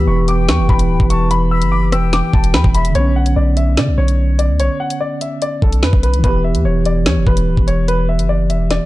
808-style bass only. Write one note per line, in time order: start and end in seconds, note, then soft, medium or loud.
0.07 0.50 E1 loud
0.49 0.60 E2 loud
0.59 0.69 E1 loud
0.69 0.91 E1 loud
0.90 0.99 D1 loud
1.00 1.63 E1 loud
1.62 1.94 F#1 loud
1.92 2.22 E1 loud
2.33 2.56 E1 loud
2.54 2.64 E2 loud
2.64 2.94 E1 loud
2.95 3.35 B1 loud
3.36 3.79 B1 loud
3.77 3.89 D3 loud
3.88 3.97 B1 loud
3.98 4.51 B1 loud
4.49 4.61 D2 loud
4.60 4.69 B1 loud
5.62 5.84 B1 loud
5.83 5.93 F#2 medium
5.93 6.15 B1 loud
6.14 6.23 C#2 loud
6.24 6.56 E1 loud
6.55 6.64 E2 loud
6.65 7.08 E1 loud
7.06 7.18 E2 loud
7.16 7.26 E1 loud
7.27 7.49 E1 loud
7.47 7.57 D1 loud
7.57 8.21 E1 loud
8.19 8.51 F#1 loud
8.50 8.79 E1 loud